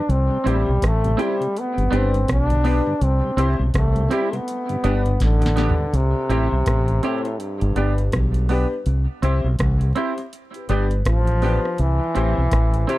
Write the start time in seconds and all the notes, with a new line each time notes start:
Already playing: D4
0.09 C2 C4, closed hi-hat
0.31 C3 G3
0.44 A1 C4 E4 G4 C5, closed hi-hat
0.48 G3
0.66 B1 C3 G3
0.82 A1, kick, cross-stick, closed hi-hat
0.86 A3
1.04 C3 G3 G4 C5, closed hi-hat
1.17 C4 E4 G4 C5, closed hi-hat
1.22 G3
1.40 C3 G3, closed hi-hat
1.57 B3, closed hi-hat
1.77 G1 G2 D3 G4 B4, closed hi-hat
1.91 G1 B3 D4 G4 B4, closed hi-hat
1.95 C4
2.13 G2 D3, closed hi-hat
2.28 B1 D4, kick, cross-stick, closed hi-hat
2.49 G2 D3, closed hi-hat
2.64 B3 D4 G4 B4, open hi-hat
2.87 G2 D3
3.01 C2 C4, closed hi-hat
3.24 C3 G3
3.37 C2 C4 E4 G4 C5, closed hi-hat
3.59 B1 C3 G3
3.74 C2 A3, kick, cross-stick, closed hi-hat
3.95 C3 G3 G4 C5, closed hi-hat
4.09 C4 E4 G4 C5, closed hi-hat
4.13 G3
4.33 C3 G3 B3, muted clean electric guitar stroke, closed hi-hat
4.48 closed hi-hat
4.69 G2 D3 G4 B4, closed hi-hat
4.83 G1 B3 D4 G4 B4, closed hi-hat
5.06 G2 D3, closed hi-hat
5.20 A1 D3, kick, snare, closed hi-hat
5.42 G2 D3, muted clean electric guitar stroke, closed hi-hat
5.46 snare
5.56 B3 D4 G4 B4, snare, closed hi-hat
5.69 floor tom
5.78 G2 D3
5.93 C2 C3, closed hi-hat
6.29 A1 C4 E4 G4 C5, closed hi-hat
6.52 B1
6.66 A1, kick, cross-stick, closed hi-hat
6.88 G4 C5, closed hi-hat
7.03 A2 C4 E4 G4 C5, closed hi-hat
7.25 muted clean electric guitar stroke, closed hi-hat
7.39 G2, closed hi-hat
7.61 G1 G4 B4, closed hi-hat
7.75 G1 B3 D4 G4 B4, closed hi-hat
7.98 closed hi-hat
8.12 B1, kick, cross-stick, closed hi-hat
8.34 closed hi-hat
8.49 B3 D4 G4 B4, open hi-hat
8.86 C2, closed hi-hat
9.22 C2 C4 E4 G4 C5, closed hi-hat
9.44 B1
9.59 C2, kick, cross-stick, closed hi-hat
9.81 G4 C5, closed hi-hat
9.95 C4 E4 G4 C5, closed hi-hat
10.18 muted clean electric guitar stroke, closed hi-hat
10.33 closed hi-hat
10.54 G4 B4, closed hi-hat
10.69 G1 B3 D4 G4 B4, closed hi-hat
10.91 closed hi-hat
11.05 A1 F3, kick, cross-stick, closed hi-hat
11.27 closed hi-hat
11.42 B3 D4 G4 B4, open hi-hat
11.65 cross-stick
11.78 C2 E3, closed hi-hat
12.15 A1 C4 E4 G4 C5, closed hi-hat
12.38 B1
12.51 A1, kick, cross-stick, closed hi-hat
12.74 G4 C5, closed hi-hat
12.87 C3 C4 E4 G4 C5, closed hi-hat